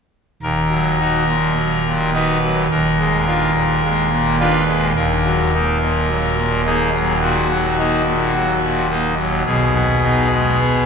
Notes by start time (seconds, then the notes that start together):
0.42 D#1 D#2 A#4
0.71 F#3
1.00 D#4 F#4
1.28 A#2
1.56 F#3
1.85 A#2
2.13 D#4 F#4 B4
2.43 F#3
2.70 D#1 D#2 A#4
2.99 G#3
3.27 D4 F4
3.56 A#2
3.84 G#3
4.11 A#2
4.40 D4 F4 B4
4.68 G#3
4.96 D#1 D#2 A#4
5.25 F#3
5.53 A#3 D#4
5.81 A#2
6.09 F#3
6.37 A#2
6.66 A#3 D#4 G#4
6.93 F#3
7.21 A#2 F#4
7.50 F#3
7.78 A#3 D#4
8.07 A#2
8.34 F#3
8.62 A#2
8.90 A#3 D#4
9.18 F#3
9.46 B1 B2 G#4
9.75 B3
10.03 B3 D#4
10.32 G#3
10.60 B3